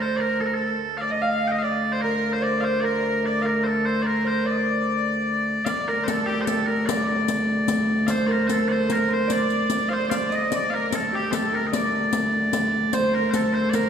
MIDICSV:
0, 0, Header, 1, 6, 480
1, 0, Start_track
1, 0, Tempo, 404313
1, 957, Time_signature, 3, 2, 24, 8
1, 16495, End_track
2, 0, Start_track
2, 0, Title_t, "Bagpipes"
2, 0, Program_c, 0, 109
2, 18, Note_on_c, 0, 72, 79
2, 198, Note_off_c, 0, 72, 0
2, 198, Note_on_c, 0, 74, 83
2, 241, Note_off_c, 0, 74, 0
2, 241, Note_on_c, 0, 70, 83
2, 484, Note_off_c, 0, 70, 0
2, 484, Note_on_c, 0, 69, 78
2, 549, Note_off_c, 0, 69, 0
2, 549, Note_on_c, 0, 70, 63
2, 638, Note_off_c, 0, 70, 0
2, 638, Note_on_c, 0, 69, 77
2, 1156, Note_off_c, 0, 69, 0
2, 1156, Note_on_c, 0, 77, 89
2, 1198, Note_off_c, 0, 77, 0
2, 1198, Note_on_c, 0, 74, 89
2, 1323, Note_off_c, 0, 74, 0
2, 1323, Note_on_c, 0, 75, 86
2, 1441, Note_off_c, 0, 75, 0
2, 1441, Note_on_c, 0, 77, 93
2, 1752, Note_off_c, 0, 77, 0
2, 1752, Note_on_c, 0, 79, 90
2, 1792, Note_off_c, 0, 79, 0
2, 1792, Note_on_c, 0, 75, 90
2, 1880, Note_off_c, 0, 75, 0
2, 1880, Note_on_c, 0, 77, 79
2, 1926, Note_off_c, 0, 77, 0
2, 1926, Note_on_c, 0, 74, 79
2, 2283, Note_off_c, 0, 74, 0
2, 2283, Note_on_c, 0, 72, 85
2, 2387, Note_off_c, 0, 72, 0
2, 2387, Note_on_c, 0, 70, 79
2, 2761, Note_off_c, 0, 70, 0
2, 2761, Note_on_c, 0, 72, 85
2, 2884, Note_off_c, 0, 72, 0
2, 2884, Note_on_c, 0, 74, 87
2, 3091, Note_off_c, 0, 74, 0
2, 3091, Note_on_c, 0, 77, 84
2, 3140, Note_off_c, 0, 77, 0
2, 3140, Note_on_c, 0, 72, 84
2, 3334, Note_off_c, 0, 72, 0
2, 3334, Note_on_c, 0, 74, 72
2, 3377, Note_off_c, 0, 74, 0
2, 3377, Note_on_c, 0, 70, 72
2, 3868, Note_off_c, 0, 70, 0
2, 3868, Note_on_c, 0, 74, 91
2, 4059, Note_off_c, 0, 74, 0
2, 4059, Note_on_c, 0, 77, 81
2, 4109, Note_off_c, 0, 77, 0
2, 4109, Note_on_c, 0, 70, 81
2, 4312, Note_off_c, 0, 70, 0
2, 4312, Note_on_c, 0, 72, 71
2, 4353, Note_off_c, 0, 72, 0
2, 4353, Note_on_c, 0, 69, 71
2, 4573, Note_off_c, 0, 69, 0
2, 4573, Note_on_c, 0, 72, 78
2, 4776, Note_off_c, 0, 72, 0
2, 4776, Note_on_c, 0, 74, 80
2, 4823, Note_off_c, 0, 74, 0
2, 4823, Note_on_c, 0, 70, 80
2, 5069, Note_off_c, 0, 70, 0
2, 5069, Note_on_c, 0, 72, 74
2, 5300, Note_off_c, 0, 72, 0
2, 5300, Note_on_c, 0, 74, 77
2, 6706, Note_off_c, 0, 74, 0
2, 6706, Note_on_c, 0, 77, 99
2, 6744, Note_off_c, 0, 77, 0
2, 6744, Note_on_c, 0, 74, 99
2, 6981, Note_off_c, 0, 74, 0
2, 6981, Note_on_c, 0, 70, 86
2, 7164, Note_off_c, 0, 70, 0
2, 7164, Note_on_c, 0, 72, 84
2, 7214, Note_off_c, 0, 72, 0
2, 7214, Note_on_c, 0, 69, 84
2, 7429, Note_off_c, 0, 69, 0
2, 7429, Note_on_c, 0, 67, 88
2, 7608, Note_off_c, 0, 67, 0
2, 7608, Note_on_c, 0, 72, 84
2, 7660, Note_off_c, 0, 72, 0
2, 7660, Note_on_c, 0, 69, 84
2, 7909, Note_off_c, 0, 69, 0
2, 7909, Note_on_c, 0, 70, 83
2, 8142, Note_off_c, 0, 70, 0
2, 8142, Note_on_c, 0, 74, 90
2, 9576, Note_off_c, 0, 74, 0
2, 9576, Note_on_c, 0, 77, 79
2, 9619, Note_off_c, 0, 77, 0
2, 9619, Note_on_c, 0, 72, 79
2, 9817, Note_off_c, 0, 72, 0
2, 9817, Note_on_c, 0, 74, 80
2, 9870, Note_off_c, 0, 74, 0
2, 9870, Note_on_c, 0, 70, 80
2, 10055, Note_off_c, 0, 70, 0
2, 10055, Note_on_c, 0, 72, 87
2, 10093, Note_off_c, 0, 72, 0
2, 10093, Note_on_c, 0, 69, 87
2, 10308, Note_off_c, 0, 69, 0
2, 10308, Note_on_c, 0, 74, 85
2, 10351, Note_off_c, 0, 74, 0
2, 10351, Note_on_c, 0, 72, 85
2, 10592, Note_off_c, 0, 72, 0
2, 10592, Note_on_c, 0, 70, 80
2, 10839, Note_off_c, 0, 70, 0
2, 10839, Note_on_c, 0, 72, 89
2, 11070, Note_off_c, 0, 72, 0
2, 11070, Note_on_c, 0, 74, 86
2, 11738, Note_off_c, 0, 74, 0
2, 11738, Note_on_c, 0, 77, 87
2, 11790, Note_off_c, 0, 77, 0
2, 11790, Note_on_c, 0, 72, 87
2, 11990, Note_off_c, 0, 72, 0
2, 11990, Note_on_c, 0, 77, 89
2, 12043, Note_off_c, 0, 77, 0
2, 12043, Note_on_c, 0, 74, 89
2, 12286, Note_off_c, 0, 74, 0
2, 12286, Note_on_c, 0, 75, 90
2, 12533, Note_off_c, 0, 75, 0
2, 12533, Note_on_c, 0, 74, 95
2, 12701, Note_off_c, 0, 74, 0
2, 12701, Note_on_c, 0, 77, 80
2, 12752, Note_off_c, 0, 77, 0
2, 12752, Note_on_c, 0, 70, 80
2, 13004, Note_off_c, 0, 70, 0
2, 13004, Note_on_c, 0, 69, 86
2, 13236, Note_off_c, 0, 69, 0
2, 13236, Note_on_c, 0, 67, 78
2, 13429, Note_off_c, 0, 67, 0
2, 13429, Note_on_c, 0, 72, 83
2, 13469, Note_off_c, 0, 72, 0
2, 13469, Note_on_c, 0, 69, 83
2, 13711, Note_off_c, 0, 69, 0
2, 13711, Note_on_c, 0, 70, 81
2, 13853, Note_off_c, 0, 70, 0
2, 13853, Note_on_c, 0, 75, 68
2, 13942, Note_off_c, 0, 75, 0
2, 13942, Note_on_c, 0, 74, 77
2, 15360, Note_off_c, 0, 74, 0
2, 15360, Note_on_c, 0, 72, 87
2, 15605, Note_off_c, 0, 72, 0
2, 15605, Note_on_c, 0, 70, 74
2, 15792, Note_off_c, 0, 70, 0
2, 15792, Note_on_c, 0, 72, 73
2, 15841, Note_off_c, 0, 72, 0
2, 15841, Note_on_c, 0, 69, 73
2, 16075, Note_off_c, 0, 69, 0
2, 16075, Note_on_c, 0, 72, 84
2, 16265, Note_off_c, 0, 72, 0
2, 16265, Note_on_c, 0, 74, 83
2, 16315, Note_off_c, 0, 74, 0
2, 16315, Note_on_c, 0, 70, 83
2, 16495, Note_off_c, 0, 70, 0
2, 16495, End_track
3, 0, Start_track
3, 0, Title_t, "Harp"
3, 0, Program_c, 1, 46
3, 0, Note_on_c, 1, 69, 71
3, 0, Note_on_c, 1, 72, 79
3, 0, Note_on_c, 1, 74, 74
3, 217, Note_on_c, 1, 70, 68
3, 288, Note_off_c, 1, 69, 0
3, 476, Note_on_c, 1, 69, 73
3, 547, Note_off_c, 1, 70, 0
3, 633, Note_off_c, 1, 69, 0
3, 637, Note_on_c, 1, 69, 64
3, 1095, Note_off_c, 1, 74, 0
3, 1210, Note_on_c, 1, 74, 70
3, 1306, Note_on_c, 1, 75, 81
3, 1377, Note_off_c, 1, 74, 0
3, 1445, Note_on_c, 1, 77, 77
3, 1794, Note_off_c, 1, 75, 0
3, 1799, Note_on_c, 1, 75, 75
3, 1933, Note_on_c, 1, 74, 76
3, 2004, Note_off_c, 1, 75, 0
3, 2330, Note_off_c, 1, 72, 0
3, 2418, Note_on_c, 1, 70, 79
3, 2489, Note_off_c, 1, 69, 0
3, 2782, Note_on_c, 1, 72, 69
3, 2863, Note_off_c, 1, 74, 0
3, 2868, Note_on_c, 1, 74, 75
3, 3105, Note_off_c, 1, 72, 0
3, 3110, Note_on_c, 1, 72, 72
3, 3352, Note_off_c, 1, 70, 0
3, 3357, Note_on_c, 1, 70, 74
3, 3421, Note_off_c, 1, 77, 0
3, 3844, Note_off_c, 1, 74, 0
3, 3848, Note_on_c, 1, 74, 75
3, 4075, Note_off_c, 1, 70, 0
3, 4079, Note_on_c, 1, 70, 66
3, 4320, Note_on_c, 1, 69, 76
3, 4392, Note_off_c, 1, 70, 0
3, 4792, Note_on_c, 1, 70, 69
3, 4864, Note_off_c, 1, 69, 0
3, 5034, Note_off_c, 1, 72, 0
3, 5039, Note_on_c, 1, 72, 65
3, 5276, Note_off_c, 1, 74, 0
3, 5281, Note_on_c, 1, 74, 76
3, 6710, Note_off_c, 1, 74, 0
3, 6715, Note_on_c, 1, 74, 93
3, 6973, Note_off_c, 1, 70, 0
3, 6978, Note_on_c, 1, 70, 81
3, 7218, Note_on_c, 1, 69, 70
3, 7290, Note_off_c, 1, 70, 0
3, 7389, Note_off_c, 1, 72, 0
3, 7458, Note_on_c, 1, 67, 65
3, 7682, Note_off_c, 1, 69, 0
3, 7687, Note_on_c, 1, 69, 81
3, 7927, Note_on_c, 1, 70, 71
3, 7998, Note_off_c, 1, 69, 0
3, 8157, Note_off_c, 1, 74, 0
3, 8162, Note_on_c, 1, 74, 75
3, 8345, Note_off_c, 1, 74, 0
3, 8350, Note_on_c, 1, 74, 55
3, 8488, Note_off_c, 1, 74, 0
3, 8493, Note_on_c, 1, 74, 74
3, 9604, Note_on_c, 1, 72, 83
3, 9815, Note_off_c, 1, 70, 0
3, 9820, Note_on_c, 1, 70, 72
3, 10076, Note_on_c, 1, 69, 72
3, 10147, Note_off_c, 1, 70, 0
3, 10252, Note_off_c, 1, 67, 0
3, 10300, Note_off_c, 1, 72, 0
3, 10305, Note_on_c, 1, 72, 72
3, 10547, Note_on_c, 1, 70, 74
3, 10619, Note_off_c, 1, 69, 0
3, 10686, Note_off_c, 1, 74, 0
3, 10779, Note_off_c, 1, 72, 0
3, 10784, Note_on_c, 1, 72, 73
3, 11011, Note_on_c, 1, 74, 88
3, 11749, Note_off_c, 1, 72, 0
3, 11754, Note_on_c, 1, 72, 77
3, 11972, Note_off_c, 1, 74, 0
3, 11976, Note_on_c, 1, 74, 87
3, 12220, Note_on_c, 1, 75, 80
3, 12291, Note_off_c, 1, 74, 0
3, 12465, Note_on_c, 1, 74, 93
3, 12536, Note_off_c, 1, 75, 0
3, 12954, Note_on_c, 1, 69, 70
3, 13026, Note_off_c, 1, 70, 0
3, 13202, Note_on_c, 1, 67, 71
3, 13423, Note_off_c, 1, 69, 0
3, 13428, Note_on_c, 1, 69, 78
3, 13685, Note_on_c, 1, 70, 71
3, 13757, Note_off_c, 1, 69, 0
3, 13915, Note_off_c, 1, 74, 0
3, 13920, Note_on_c, 1, 74, 78
3, 14104, Note_off_c, 1, 72, 0
3, 15354, Note_on_c, 1, 72, 95
3, 15581, Note_off_c, 1, 70, 0
3, 15586, Note_on_c, 1, 70, 76
3, 15824, Note_on_c, 1, 69, 77
3, 15895, Note_off_c, 1, 70, 0
3, 15996, Note_off_c, 1, 67, 0
3, 16046, Note_off_c, 1, 72, 0
3, 16050, Note_on_c, 1, 72, 78
3, 16112, Note_off_c, 1, 74, 0
3, 16313, Note_on_c, 1, 70, 87
3, 16384, Note_off_c, 1, 69, 0
3, 16495, Note_off_c, 1, 70, 0
3, 16495, Note_off_c, 1, 72, 0
3, 16495, End_track
4, 0, Start_track
4, 0, Title_t, "Shawm"
4, 0, Program_c, 2, 111
4, 0, Note_on_c, 2, 72, 67
4, 190, Note_off_c, 2, 72, 0
4, 190, Note_on_c, 2, 72, 48
4, 241, Note_on_c, 2, 70, 74
4, 258, Note_off_c, 2, 72, 0
4, 467, Note_on_c, 2, 69, 70
4, 485, Note_off_c, 2, 70, 0
4, 631, Note_off_c, 2, 69, 0
4, 645, Note_on_c, 2, 69, 68
4, 940, Note_off_c, 2, 69, 0
4, 1209, Note_on_c, 2, 74, 73
4, 1316, Note_off_c, 2, 74, 0
4, 1328, Note_on_c, 2, 75, 79
4, 1449, Note_on_c, 2, 77, 77
4, 1466, Note_off_c, 2, 75, 0
4, 1804, Note_on_c, 2, 75, 79
4, 1822, Note_off_c, 2, 77, 0
4, 1951, Note_on_c, 2, 74, 72
4, 1969, Note_off_c, 2, 75, 0
4, 2297, Note_off_c, 2, 74, 0
4, 2302, Note_on_c, 2, 72, 73
4, 2405, Note_off_c, 2, 72, 0
4, 2410, Note_on_c, 2, 70, 86
4, 2742, Note_off_c, 2, 70, 0
4, 2779, Note_on_c, 2, 72, 72
4, 2884, Note_off_c, 2, 72, 0
4, 2896, Note_on_c, 2, 74, 77
4, 3377, Note_on_c, 2, 70, 75
4, 3395, Note_off_c, 2, 74, 0
4, 3852, Note_off_c, 2, 70, 0
4, 3859, Note_on_c, 2, 74, 85
4, 4104, Note_on_c, 2, 70, 71
4, 4122, Note_off_c, 2, 74, 0
4, 4326, Note_off_c, 2, 70, 0
4, 4333, Note_on_c, 2, 69, 72
4, 4554, Note_off_c, 2, 69, 0
4, 4593, Note_on_c, 2, 72, 70
4, 4805, Note_off_c, 2, 72, 0
4, 4811, Note_on_c, 2, 70, 68
4, 5257, Note_off_c, 2, 70, 0
4, 5295, Note_on_c, 2, 74, 74
4, 5366, Note_on_c, 2, 75, 61
4, 5383, Note_off_c, 2, 74, 0
4, 5437, Note_on_c, 2, 74, 75
4, 5455, Note_off_c, 2, 75, 0
4, 6485, Note_off_c, 2, 74, 0
4, 6739, Note_on_c, 2, 74, 91
4, 6959, Note_off_c, 2, 74, 0
4, 6972, Note_on_c, 2, 70, 69
4, 7225, Note_on_c, 2, 69, 75
4, 7243, Note_off_c, 2, 70, 0
4, 7457, Note_on_c, 2, 67, 71
4, 7475, Note_off_c, 2, 69, 0
4, 7699, Note_on_c, 2, 69, 70
4, 7717, Note_off_c, 2, 67, 0
4, 7935, Note_off_c, 2, 69, 0
4, 7945, Note_on_c, 2, 70, 76
4, 8172, Note_on_c, 2, 74, 89
4, 8190, Note_off_c, 2, 70, 0
4, 8412, Note_off_c, 2, 74, 0
4, 8417, Note_on_c, 2, 74, 67
4, 8637, Note_off_c, 2, 74, 0
4, 9627, Note_on_c, 2, 72, 83
4, 10065, Note_off_c, 2, 72, 0
4, 10100, Note_on_c, 2, 69, 71
4, 10337, Note_on_c, 2, 72, 79
4, 10355, Note_off_c, 2, 69, 0
4, 10582, Note_on_c, 2, 70, 74
4, 10599, Note_off_c, 2, 72, 0
4, 10815, Note_on_c, 2, 72, 77
4, 10833, Note_off_c, 2, 70, 0
4, 11051, Note_off_c, 2, 72, 0
4, 11056, Note_on_c, 2, 74, 95
4, 11723, Note_off_c, 2, 74, 0
4, 11766, Note_on_c, 2, 72, 79
4, 11989, Note_off_c, 2, 72, 0
4, 12006, Note_on_c, 2, 74, 86
4, 12258, Note_on_c, 2, 75, 86
4, 12276, Note_off_c, 2, 74, 0
4, 12491, Note_off_c, 2, 75, 0
4, 12499, Note_on_c, 2, 74, 94
4, 12747, Note_on_c, 2, 70, 78
4, 12765, Note_off_c, 2, 74, 0
4, 12980, Note_on_c, 2, 69, 69
4, 12997, Note_off_c, 2, 70, 0
4, 13205, Note_off_c, 2, 69, 0
4, 13212, Note_on_c, 2, 67, 71
4, 13456, Note_on_c, 2, 69, 78
4, 13474, Note_off_c, 2, 67, 0
4, 13689, Note_on_c, 2, 70, 71
4, 13707, Note_off_c, 2, 69, 0
4, 13921, Note_off_c, 2, 70, 0
4, 13928, Note_on_c, 2, 74, 86
4, 14368, Note_off_c, 2, 74, 0
4, 15364, Note_on_c, 2, 72, 78
4, 15581, Note_off_c, 2, 72, 0
4, 15598, Note_on_c, 2, 70, 73
4, 15830, Note_on_c, 2, 69, 74
4, 15848, Note_off_c, 2, 70, 0
4, 16069, Note_on_c, 2, 72, 83
4, 16087, Note_off_c, 2, 69, 0
4, 16308, Note_off_c, 2, 72, 0
4, 16314, Note_on_c, 2, 70, 71
4, 16495, Note_off_c, 2, 70, 0
4, 16495, End_track
5, 0, Start_track
5, 0, Title_t, "Viola da gamba"
5, 0, Program_c, 3, 42
5, 0, Note_on_c, 3, 38, 65
5, 959, Note_off_c, 3, 38, 0
5, 966, Note_on_c, 3, 38, 67
5, 6717, Note_off_c, 3, 38, 0
5, 6724, Note_on_c, 3, 38, 70
5, 12495, Note_off_c, 3, 38, 0
5, 12502, Note_on_c, 3, 38, 67
5, 16495, Note_off_c, 3, 38, 0
5, 16495, End_track
6, 0, Start_track
6, 0, Title_t, "Riq"
6, 6724, Note_on_c, 9, 54, 58
6, 6842, Note_off_c, 9, 54, 0
6, 7217, Note_on_c, 9, 54, 65
6, 7336, Note_off_c, 9, 54, 0
6, 7685, Note_on_c, 9, 54, 62
6, 7803, Note_off_c, 9, 54, 0
6, 8177, Note_on_c, 9, 54, 76
6, 8295, Note_off_c, 9, 54, 0
6, 8647, Note_on_c, 9, 54, 63
6, 8766, Note_off_c, 9, 54, 0
6, 9118, Note_on_c, 9, 54, 69
6, 9237, Note_off_c, 9, 54, 0
6, 9590, Note_on_c, 9, 54, 63
6, 9709, Note_off_c, 9, 54, 0
6, 10084, Note_on_c, 9, 54, 56
6, 10202, Note_off_c, 9, 54, 0
6, 10562, Note_on_c, 9, 54, 59
6, 10680, Note_off_c, 9, 54, 0
6, 11040, Note_on_c, 9, 54, 61
6, 11158, Note_off_c, 9, 54, 0
6, 11279, Note_on_c, 9, 54, 19
6, 11398, Note_off_c, 9, 54, 0
6, 11512, Note_on_c, 9, 54, 57
6, 11630, Note_off_c, 9, 54, 0
6, 12007, Note_on_c, 9, 54, 66
6, 12126, Note_off_c, 9, 54, 0
6, 12252, Note_on_c, 9, 54, 20
6, 12371, Note_off_c, 9, 54, 0
6, 12486, Note_on_c, 9, 54, 61
6, 12605, Note_off_c, 9, 54, 0
6, 12970, Note_on_c, 9, 54, 68
6, 13088, Note_off_c, 9, 54, 0
6, 13447, Note_on_c, 9, 54, 70
6, 13566, Note_off_c, 9, 54, 0
6, 13930, Note_on_c, 9, 54, 68
6, 14049, Note_off_c, 9, 54, 0
6, 14396, Note_on_c, 9, 54, 68
6, 14515, Note_off_c, 9, 54, 0
6, 14876, Note_on_c, 9, 54, 71
6, 14995, Note_off_c, 9, 54, 0
6, 15350, Note_on_c, 9, 54, 67
6, 15469, Note_off_c, 9, 54, 0
6, 15831, Note_on_c, 9, 54, 65
6, 15950, Note_off_c, 9, 54, 0
6, 16304, Note_on_c, 9, 54, 56
6, 16423, Note_off_c, 9, 54, 0
6, 16495, End_track
0, 0, End_of_file